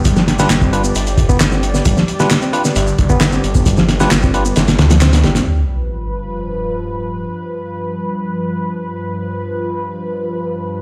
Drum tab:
HH |x-x-x-x-xxx-x-x-|x-x-xxx-x-x-x-x-|x-x-x-x-xxxxxxxx|----------------|
SH |xx-xxx-xxx-xxx-x|xx-xxx-xxx-xxx-x|xx-xxx-xxx-xxx-x|----------------|
CP |----x-------x---|----x-------x---|----x-------x---|----------------|
SD |-oooo-------oo-o|-o-oo--o----oo--|-oooo---oooooooo|----------------|
BD |o----o----oo----|o---------oo---o|o----o----------|----------------|

HH |----------------|----------------|
SH |----------------|----------------|
CP |----------------|----------------|
SD |----------------|----------------|
BD |----------------|----------------|